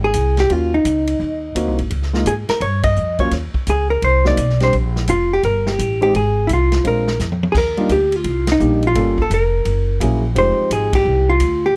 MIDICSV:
0, 0, Header, 1, 6, 480
1, 0, Start_track
1, 0, Tempo, 351906
1, 682, Time_signature, 4, 2, 24, 8
1, 16043, End_track
2, 0, Start_track
2, 0, Title_t, "Hollow-body jazz guitar"
2, 0, Program_c, 0, 26
2, 59, Note_on_c, 0, 68, 89
2, 540, Note_off_c, 0, 68, 0
2, 547, Note_on_c, 0, 67, 83
2, 713, Note_off_c, 0, 67, 0
2, 713, Note_on_c, 0, 65, 80
2, 1013, Note_on_c, 0, 63, 63
2, 1017, Note_off_c, 0, 65, 0
2, 2393, Note_off_c, 0, 63, 0
2, 3101, Note_on_c, 0, 68, 69
2, 3183, Note_off_c, 0, 68, 0
2, 3406, Note_on_c, 0, 70, 75
2, 3568, Note_off_c, 0, 70, 0
2, 3573, Note_on_c, 0, 73, 86
2, 3860, Note_off_c, 0, 73, 0
2, 3875, Note_on_c, 0, 75, 90
2, 4359, Note_off_c, 0, 75, 0
2, 4365, Note_on_c, 0, 73, 73
2, 4523, Note_off_c, 0, 73, 0
2, 5047, Note_on_c, 0, 68, 64
2, 5319, Note_off_c, 0, 68, 0
2, 5324, Note_on_c, 0, 70, 74
2, 5500, Note_off_c, 0, 70, 0
2, 5517, Note_on_c, 0, 72, 84
2, 5794, Note_off_c, 0, 72, 0
2, 5830, Note_on_c, 0, 74, 89
2, 6265, Note_off_c, 0, 74, 0
2, 6322, Note_on_c, 0, 72, 68
2, 6464, Note_off_c, 0, 72, 0
2, 6952, Note_on_c, 0, 65, 71
2, 7263, Note_off_c, 0, 65, 0
2, 7276, Note_on_c, 0, 67, 84
2, 7421, Note_off_c, 0, 67, 0
2, 7430, Note_on_c, 0, 70, 91
2, 7743, Note_off_c, 0, 70, 0
2, 7743, Note_on_c, 0, 67, 89
2, 8207, Note_off_c, 0, 67, 0
2, 8223, Note_on_c, 0, 67, 76
2, 8391, Note_off_c, 0, 67, 0
2, 8407, Note_on_c, 0, 68, 74
2, 8816, Note_off_c, 0, 68, 0
2, 8829, Note_on_c, 0, 64, 57
2, 8877, Note_off_c, 0, 64, 0
2, 8912, Note_on_c, 0, 65, 69
2, 9333, Note_off_c, 0, 65, 0
2, 9378, Note_on_c, 0, 70, 77
2, 9805, Note_off_c, 0, 70, 0
2, 10259, Note_on_c, 0, 68, 64
2, 10312, Note_off_c, 0, 68, 0
2, 10335, Note_on_c, 0, 70, 89
2, 10804, Note_on_c, 0, 67, 81
2, 10809, Note_off_c, 0, 70, 0
2, 11127, Note_off_c, 0, 67, 0
2, 11127, Note_on_c, 0, 65, 91
2, 11585, Note_off_c, 0, 65, 0
2, 11619, Note_on_c, 0, 63, 83
2, 12084, Note_off_c, 0, 63, 0
2, 12100, Note_on_c, 0, 65, 77
2, 12564, Note_off_c, 0, 65, 0
2, 12574, Note_on_c, 0, 69, 81
2, 12708, Note_off_c, 0, 69, 0
2, 12739, Note_on_c, 0, 70, 76
2, 13618, Note_off_c, 0, 70, 0
2, 14165, Note_on_c, 0, 72, 78
2, 14593, Note_off_c, 0, 72, 0
2, 14631, Note_on_c, 0, 68, 73
2, 14906, Note_off_c, 0, 68, 0
2, 14938, Note_on_c, 0, 67, 82
2, 15406, Note_on_c, 0, 65, 83
2, 15419, Note_off_c, 0, 67, 0
2, 15893, Note_off_c, 0, 65, 0
2, 15902, Note_on_c, 0, 67, 82
2, 16043, Note_off_c, 0, 67, 0
2, 16043, End_track
3, 0, Start_track
3, 0, Title_t, "Upright piano"
3, 0, Program_c, 1, 0
3, 676, Note_on_c, 1, 58, 45
3, 676, Note_on_c, 1, 61, 42
3, 685, Note_on_c, 1, 65, 46
3, 687, Note_on_c, 1, 66, 54
3, 958, Note_off_c, 1, 58, 0
3, 958, Note_off_c, 1, 61, 0
3, 963, Note_off_c, 1, 65, 0
3, 964, Note_off_c, 1, 66, 0
3, 2117, Note_on_c, 1, 58, 56
3, 2126, Note_on_c, 1, 60, 51
3, 2128, Note_on_c, 1, 63, 53
3, 2131, Note_on_c, 1, 66, 67
3, 2401, Note_off_c, 1, 58, 0
3, 2406, Note_off_c, 1, 60, 0
3, 2406, Note_off_c, 1, 63, 0
3, 2408, Note_off_c, 1, 66, 0
3, 2908, Note_on_c, 1, 56, 59
3, 2916, Note_on_c, 1, 58, 57
3, 2917, Note_on_c, 1, 63, 54
3, 2926, Note_on_c, 1, 65, 68
3, 3068, Note_off_c, 1, 56, 0
3, 3072, Note_off_c, 1, 58, 0
3, 3072, Note_off_c, 1, 63, 0
3, 3076, Note_off_c, 1, 65, 0
3, 4355, Note_on_c, 1, 58, 52
3, 4358, Note_on_c, 1, 54, 56
3, 4367, Note_on_c, 1, 61, 50
3, 4367, Note_on_c, 1, 65, 64
3, 4513, Note_off_c, 1, 58, 0
3, 4514, Note_off_c, 1, 54, 0
3, 4519, Note_off_c, 1, 61, 0
3, 4519, Note_off_c, 1, 65, 0
3, 5797, Note_on_c, 1, 54, 64
3, 5799, Note_on_c, 1, 58, 54
3, 5805, Note_on_c, 1, 60, 56
3, 5813, Note_on_c, 1, 63, 68
3, 5955, Note_off_c, 1, 54, 0
3, 5956, Note_off_c, 1, 58, 0
3, 5959, Note_off_c, 1, 60, 0
3, 5963, Note_off_c, 1, 63, 0
3, 6276, Note_on_c, 1, 60, 49
3, 6279, Note_on_c, 1, 55, 51
3, 6284, Note_on_c, 1, 62, 51
3, 6288, Note_on_c, 1, 67, 64
3, 6435, Note_off_c, 1, 60, 0
3, 6436, Note_off_c, 1, 55, 0
3, 6439, Note_off_c, 1, 62, 0
3, 6441, Note_off_c, 1, 67, 0
3, 8197, Note_on_c, 1, 56, 63
3, 8198, Note_on_c, 1, 63, 55
3, 8201, Note_on_c, 1, 60, 57
3, 8208, Note_on_c, 1, 67, 65
3, 8356, Note_off_c, 1, 56, 0
3, 8357, Note_off_c, 1, 63, 0
3, 8358, Note_off_c, 1, 60, 0
3, 8361, Note_off_c, 1, 67, 0
3, 9330, Note_on_c, 1, 56, 55
3, 9333, Note_on_c, 1, 60, 50
3, 9337, Note_on_c, 1, 62, 49
3, 9343, Note_on_c, 1, 65, 59
3, 9612, Note_off_c, 1, 56, 0
3, 9613, Note_off_c, 1, 60, 0
3, 9615, Note_off_c, 1, 62, 0
3, 9618, Note_off_c, 1, 65, 0
3, 10601, Note_on_c, 1, 55, 68
3, 10603, Note_on_c, 1, 58, 57
3, 10609, Note_on_c, 1, 62, 58
3, 10610, Note_on_c, 1, 65, 76
3, 10612, Note_on_c, 1, 63, 62
3, 10757, Note_off_c, 1, 55, 0
3, 10758, Note_off_c, 1, 58, 0
3, 10761, Note_off_c, 1, 62, 0
3, 10761, Note_off_c, 1, 65, 0
3, 10762, Note_off_c, 1, 63, 0
3, 11726, Note_on_c, 1, 58, 49
3, 11727, Note_on_c, 1, 55, 55
3, 11733, Note_on_c, 1, 63, 45
3, 11735, Note_on_c, 1, 62, 48
3, 11741, Note_on_c, 1, 67, 62
3, 12007, Note_off_c, 1, 58, 0
3, 12008, Note_off_c, 1, 55, 0
3, 12011, Note_off_c, 1, 63, 0
3, 12012, Note_off_c, 1, 62, 0
3, 12015, Note_off_c, 1, 67, 0
3, 12212, Note_on_c, 1, 58, 52
3, 12213, Note_on_c, 1, 55, 56
3, 12214, Note_on_c, 1, 61, 51
3, 12218, Note_on_c, 1, 65, 54
3, 12221, Note_on_c, 1, 69, 67
3, 12490, Note_off_c, 1, 55, 0
3, 12490, Note_off_c, 1, 58, 0
3, 12491, Note_off_c, 1, 61, 0
3, 12493, Note_off_c, 1, 65, 0
3, 12494, Note_off_c, 1, 69, 0
3, 13649, Note_on_c, 1, 58, 54
3, 13650, Note_on_c, 1, 54, 51
3, 13657, Note_on_c, 1, 64, 47
3, 13659, Note_on_c, 1, 61, 50
3, 13663, Note_on_c, 1, 68, 61
3, 13926, Note_off_c, 1, 58, 0
3, 13927, Note_off_c, 1, 54, 0
3, 13930, Note_off_c, 1, 64, 0
3, 13931, Note_off_c, 1, 61, 0
3, 13934, Note_off_c, 1, 68, 0
3, 14117, Note_on_c, 1, 53, 57
3, 14123, Note_on_c, 1, 60, 50
3, 14128, Note_on_c, 1, 67, 64
3, 14129, Note_on_c, 1, 56, 55
3, 14135, Note_on_c, 1, 63, 57
3, 15456, Note_off_c, 1, 53, 0
3, 15459, Note_off_c, 1, 60, 0
3, 15462, Note_off_c, 1, 56, 0
3, 15462, Note_off_c, 1, 67, 0
3, 15465, Note_off_c, 1, 63, 0
3, 16043, End_track
4, 0, Start_track
4, 0, Title_t, "Upright bass"
4, 0, Program_c, 2, 32
4, 0, Note_on_c, 2, 32, 75
4, 184, Note_off_c, 2, 32, 0
4, 192, Note_on_c, 2, 36, 80
4, 663, Note_off_c, 2, 36, 0
4, 678, Note_on_c, 2, 39, 72
4, 1148, Note_off_c, 2, 39, 0
4, 1157, Note_on_c, 2, 37, 78
4, 1624, Note_off_c, 2, 37, 0
4, 1632, Note_on_c, 2, 39, 71
4, 2106, Note_off_c, 2, 39, 0
4, 2116, Note_on_c, 2, 38, 69
4, 2281, Note_off_c, 2, 38, 0
4, 2281, Note_on_c, 2, 36, 47
4, 2436, Note_off_c, 2, 36, 0
4, 2444, Note_on_c, 2, 32, 54
4, 2590, Note_off_c, 2, 32, 0
4, 2598, Note_on_c, 2, 37, 71
4, 3070, Note_off_c, 2, 37, 0
4, 3080, Note_on_c, 2, 44, 76
4, 3372, Note_off_c, 2, 44, 0
4, 3553, Note_on_c, 2, 43, 80
4, 4028, Note_off_c, 2, 43, 0
4, 4049, Note_on_c, 2, 41, 79
4, 4511, Note_off_c, 2, 41, 0
4, 4519, Note_on_c, 2, 39, 70
4, 4813, Note_off_c, 2, 39, 0
4, 5005, Note_on_c, 2, 37, 79
4, 5476, Note_off_c, 2, 37, 0
4, 5486, Note_on_c, 2, 36, 77
4, 5957, Note_off_c, 2, 36, 0
4, 5966, Note_on_c, 2, 35, 84
4, 6437, Note_off_c, 2, 35, 0
4, 6453, Note_on_c, 2, 34, 75
4, 6921, Note_off_c, 2, 34, 0
4, 6930, Note_on_c, 2, 29, 77
4, 7399, Note_off_c, 2, 29, 0
4, 7411, Note_on_c, 2, 31, 79
4, 7880, Note_off_c, 2, 31, 0
4, 7894, Note_on_c, 2, 33, 77
4, 8362, Note_off_c, 2, 33, 0
4, 8375, Note_on_c, 2, 32, 77
4, 8842, Note_off_c, 2, 32, 0
4, 8855, Note_on_c, 2, 36, 78
4, 9322, Note_off_c, 2, 36, 0
4, 9334, Note_on_c, 2, 34, 75
4, 9801, Note_off_c, 2, 34, 0
4, 9815, Note_on_c, 2, 41, 73
4, 10281, Note_off_c, 2, 41, 0
4, 10294, Note_on_c, 2, 39, 75
4, 10760, Note_off_c, 2, 39, 0
4, 10769, Note_on_c, 2, 38, 77
4, 11237, Note_off_c, 2, 38, 0
4, 11244, Note_on_c, 2, 36, 74
4, 11714, Note_off_c, 2, 36, 0
4, 11733, Note_on_c, 2, 34, 83
4, 12198, Note_off_c, 2, 34, 0
4, 12207, Note_on_c, 2, 31, 75
4, 12674, Note_off_c, 2, 31, 0
4, 12686, Note_on_c, 2, 29, 78
4, 13153, Note_off_c, 2, 29, 0
4, 13164, Note_on_c, 2, 30, 79
4, 13632, Note_off_c, 2, 30, 0
4, 13643, Note_on_c, 2, 34, 84
4, 14110, Note_off_c, 2, 34, 0
4, 14121, Note_on_c, 2, 29, 76
4, 14411, Note_off_c, 2, 29, 0
4, 14600, Note_on_c, 2, 32, 77
4, 15068, Note_off_c, 2, 32, 0
4, 15076, Note_on_c, 2, 36, 81
4, 15545, Note_off_c, 2, 36, 0
4, 15552, Note_on_c, 2, 38, 85
4, 16023, Note_off_c, 2, 38, 0
4, 16043, End_track
5, 0, Start_track
5, 0, Title_t, "Muted upright bass strokes"
5, 3400, Note_on_c, 9, 29, 35
5, 3537, Note_off_c, 9, 29, 0
5, 4830, Note_on_c, 9, 29, 32
5, 4966, Note_off_c, 9, 29, 0
5, 14432, Note_on_c, 9, 29, 35
5, 14569, Note_off_c, 9, 29, 0
5, 16043, End_track
6, 0, Start_track
6, 0, Title_t, "Drums"
6, 185, Note_on_c, 9, 44, 59
6, 185, Note_on_c, 9, 51, 64
6, 196, Note_on_c, 9, 36, 17
6, 321, Note_off_c, 9, 44, 0
6, 321, Note_off_c, 9, 51, 0
6, 332, Note_off_c, 9, 36, 0
6, 505, Note_on_c, 9, 51, 36
6, 507, Note_on_c, 9, 38, 45
6, 642, Note_off_c, 9, 51, 0
6, 643, Note_off_c, 9, 38, 0
6, 678, Note_on_c, 9, 51, 51
6, 680, Note_on_c, 9, 36, 16
6, 815, Note_off_c, 9, 51, 0
6, 817, Note_off_c, 9, 36, 0
6, 1160, Note_on_c, 9, 36, 23
6, 1160, Note_on_c, 9, 44, 51
6, 1160, Note_on_c, 9, 51, 59
6, 1296, Note_off_c, 9, 36, 0
6, 1296, Note_off_c, 9, 44, 0
6, 1296, Note_off_c, 9, 51, 0
6, 1465, Note_on_c, 9, 51, 56
6, 1601, Note_off_c, 9, 51, 0
6, 1639, Note_on_c, 9, 36, 20
6, 1775, Note_off_c, 9, 36, 0
6, 2120, Note_on_c, 9, 36, 20
6, 2123, Note_on_c, 9, 44, 53
6, 2123, Note_on_c, 9, 51, 58
6, 2256, Note_off_c, 9, 36, 0
6, 2259, Note_off_c, 9, 44, 0
6, 2259, Note_off_c, 9, 51, 0
6, 2434, Note_on_c, 9, 51, 40
6, 2571, Note_off_c, 9, 51, 0
6, 2598, Note_on_c, 9, 51, 53
6, 2601, Note_on_c, 9, 36, 21
6, 2735, Note_off_c, 9, 51, 0
6, 2737, Note_off_c, 9, 36, 0
6, 2759, Note_on_c, 9, 38, 26
6, 2896, Note_off_c, 9, 38, 0
6, 2919, Note_on_c, 9, 38, 37
6, 3055, Note_off_c, 9, 38, 0
6, 3080, Note_on_c, 9, 36, 24
6, 3080, Note_on_c, 9, 44, 51
6, 3080, Note_on_c, 9, 51, 53
6, 3216, Note_off_c, 9, 36, 0
6, 3216, Note_off_c, 9, 44, 0
6, 3216, Note_off_c, 9, 51, 0
6, 3392, Note_on_c, 9, 51, 41
6, 3394, Note_on_c, 9, 38, 54
6, 3529, Note_off_c, 9, 51, 0
6, 3530, Note_off_c, 9, 38, 0
6, 3559, Note_on_c, 9, 36, 17
6, 3560, Note_on_c, 9, 51, 51
6, 3696, Note_off_c, 9, 36, 0
6, 3697, Note_off_c, 9, 51, 0
6, 3865, Note_on_c, 9, 51, 61
6, 3869, Note_on_c, 9, 36, 72
6, 4001, Note_off_c, 9, 51, 0
6, 4005, Note_off_c, 9, 36, 0
6, 4035, Note_on_c, 9, 44, 46
6, 4171, Note_off_c, 9, 44, 0
6, 4346, Note_on_c, 9, 51, 38
6, 4350, Note_on_c, 9, 36, 50
6, 4482, Note_off_c, 9, 51, 0
6, 4486, Note_off_c, 9, 36, 0
6, 4519, Note_on_c, 9, 51, 57
6, 4520, Note_on_c, 9, 38, 33
6, 4522, Note_on_c, 9, 36, 22
6, 4655, Note_off_c, 9, 51, 0
6, 4657, Note_off_c, 9, 38, 0
6, 4659, Note_off_c, 9, 36, 0
6, 4832, Note_on_c, 9, 36, 50
6, 4969, Note_off_c, 9, 36, 0
6, 5001, Note_on_c, 9, 44, 57
6, 5001, Note_on_c, 9, 51, 59
6, 5005, Note_on_c, 9, 36, 16
6, 5137, Note_off_c, 9, 44, 0
6, 5137, Note_off_c, 9, 51, 0
6, 5141, Note_off_c, 9, 36, 0
6, 5486, Note_on_c, 9, 51, 54
6, 5487, Note_on_c, 9, 36, 20
6, 5623, Note_off_c, 9, 36, 0
6, 5623, Note_off_c, 9, 51, 0
6, 5795, Note_on_c, 9, 38, 42
6, 5931, Note_off_c, 9, 38, 0
6, 5963, Note_on_c, 9, 44, 51
6, 5963, Note_on_c, 9, 51, 65
6, 5968, Note_on_c, 9, 36, 23
6, 6099, Note_off_c, 9, 44, 0
6, 6099, Note_off_c, 9, 51, 0
6, 6104, Note_off_c, 9, 36, 0
6, 6130, Note_on_c, 9, 38, 23
6, 6266, Note_off_c, 9, 38, 0
6, 6277, Note_on_c, 9, 51, 40
6, 6283, Note_on_c, 9, 38, 35
6, 6414, Note_off_c, 9, 51, 0
6, 6419, Note_off_c, 9, 38, 0
6, 6449, Note_on_c, 9, 51, 47
6, 6450, Note_on_c, 9, 36, 22
6, 6585, Note_off_c, 9, 51, 0
6, 6587, Note_off_c, 9, 36, 0
6, 6766, Note_on_c, 9, 38, 40
6, 6902, Note_off_c, 9, 38, 0
6, 6922, Note_on_c, 9, 44, 54
6, 6922, Note_on_c, 9, 51, 60
6, 6931, Note_on_c, 9, 36, 23
6, 7059, Note_off_c, 9, 44, 0
6, 7059, Note_off_c, 9, 51, 0
6, 7067, Note_off_c, 9, 36, 0
6, 7411, Note_on_c, 9, 51, 53
6, 7413, Note_on_c, 9, 36, 18
6, 7547, Note_off_c, 9, 51, 0
6, 7549, Note_off_c, 9, 36, 0
6, 7727, Note_on_c, 9, 38, 50
6, 7864, Note_off_c, 9, 38, 0
6, 7897, Note_on_c, 9, 36, 17
6, 7902, Note_on_c, 9, 44, 46
6, 7902, Note_on_c, 9, 51, 58
6, 8034, Note_off_c, 9, 36, 0
6, 8038, Note_off_c, 9, 44, 0
6, 8038, Note_off_c, 9, 51, 0
6, 8211, Note_on_c, 9, 51, 37
6, 8347, Note_off_c, 9, 51, 0
6, 8377, Note_on_c, 9, 36, 15
6, 8383, Note_on_c, 9, 51, 51
6, 8514, Note_off_c, 9, 36, 0
6, 8520, Note_off_c, 9, 51, 0
6, 8855, Note_on_c, 9, 44, 45
6, 8855, Note_on_c, 9, 51, 59
6, 8857, Note_on_c, 9, 36, 23
6, 8991, Note_off_c, 9, 44, 0
6, 8991, Note_off_c, 9, 51, 0
6, 8994, Note_off_c, 9, 36, 0
6, 9163, Note_on_c, 9, 51, 43
6, 9164, Note_on_c, 9, 38, 53
6, 9299, Note_off_c, 9, 51, 0
6, 9301, Note_off_c, 9, 38, 0
6, 9337, Note_on_c, 9, 36, 17
6, 9339, Note_on_c, 9, 51, 55
6, 9473, Note_off_c, 9, 36, 0
6, 9475, Note_off_c, 9, 51, 0
6, 9649, Note_on_c, 9, 38, 48
6, 9785, Note_off_c, 9, 38, 0
6, 9813, Note_on_c, 9, 44, 48
6, 9814, Note_on_c, 9, 38, 40
6, 9949, Note_off_c, 9, 44, 0
6, 9950, Note_off_c, 9, 38, 0
6, 9981, Note_on_c, 9, 48, 46
6, 10117, Note_off_c, 9, 48, 0
6, 10135, Note_on_c, 9, 48, 69
6, 10271, Note_off_c, 9, 48, 0
6, 10294, Note_on_c, 9, 36, 64
6, 10299, Note_on_c, 9, 49, 69
6, 10430, Note_off_c, 9, 36, 0
6, 10436, Note_off_c, 9, 49, 0
6, 10603, Note_on_c, 9, 51, 40
6, 10739, Note_off_c, 9, 51, 0
6, 10766, Note_on_c, 9, 44, 54
6, 10766, Note_on_c, 9, 51, 59
6, 10771, Note_on_c, 9, 36, 16
6, 10902, Note_off_c, 9, 44, 0
6, 10902, Note_off_c, 9, 51, 0
6, 10908, Note_off_c, 9, 36, 0
6, 11077, Note_on_c, 9, 51, 46
6, 11213, Note_off_c, 9, 51, 0
6, 11241, Note_on_c, 9, 51, 57
6, 11247, Note_on_c, 9, 36, 23
6, 11378, Note_off_c, 9, 51, 0
6, 11383, Note_off_c, 9, 36, 0
6, 11555, Note_on_c, 9, 51, 61
6, 11556, Note_on_c, 9, 38, 74
6, 11691, Note_off_c, 9, 51, 0
6, 11692, Note_off_c, 9, 38, 0
6, 11726, Note_on_c, 9, 44, 52
6, 11863, Note_off_c, 9, 44, 0
6, 12038, Note_on_c, 9, 51, 43
6, 12174, Note_off_c, 9, 51, 0
6, 12209, Note_on_c, 9, 36, 22
6, 12212, Note_on_c, 9, 51, 60
6, 12346, Note_off_c, 9, 36, 0
6, 12348, Note_off_c, 9, 51, 0
6, 12519, Note_on_c, 9, 36, 50
6, 12655, Note_off_c, 9, 36, 0
6, 12690, Note_on_c, 9, 36, 21
6, 12694, Note_on_c, 9, 44, 50
6, 12694, Note_on_c, 9, 51, 66
6, 12827, Note_off_c, 9, 36, 0
6, 12830, Note_off_c, 9, 44, 0
6, 12830, Note_off_c, 9, 51, 0
6, 13165, Note_on_c, 9, 51, 55
6, 13166, Note_on_c, 9, 36, 18
6, 13301, Note_off_c, 9, 51, 0
6, 13303, Note_off_c, 9, 36, 0
6, 13647, Note_on_c, 9, 36, 25
6, 13654, Note_on_c, 9, 44, 52
6, 13654, Note_on_c, 9, 51, 61
6, 13783, Note_off_c, 9, 36, 0
6, 13790, Note_off_c, 9, 44, 0
6, 13790, Note_off_c, 9, 51, 0
6, 14125, Note_on_c, 9, 36, 22
6, 14131, Note_on_c, 9, 51, 58
6, 14261, Note_off_c, 9, 36, 0
6, 14267, Note_off_c, 9, 51, 0
6, 14602, Note_on_c, 9, 36, 17
6, 14605, Note_on_c, 9, 44, 52
6, 14605, Note_on_c, 9, 51, 66
6, 14739, Note_off_c, 9, 36, 0
6, 14742, Note_off_c, 9, 44, 0
6, 14742, Note_off_c, 9, 51, 0
6, 14909, Note_on_c, 9, 36, 81
6, 14911, Note_on_c, 9, 51, 70
6, 15045, Note_off_c, 9, 36, 0
6, 15047, Note_off_c, 9, 51, 0
6, 15546, Note_on_c, 9, 44, 47
6, 15546, Note_on_c, 9, 51, 65
6, 15555, Note_on_c, 9, 36, 20
6, 15682, Note_off_c, 9, 44, 0
6, 15682, Note_off_c, 9, 51, 0
6, 15691, Note_off_c, 9, 36, 0
6, 16043, End_track
0, 0, End_of_file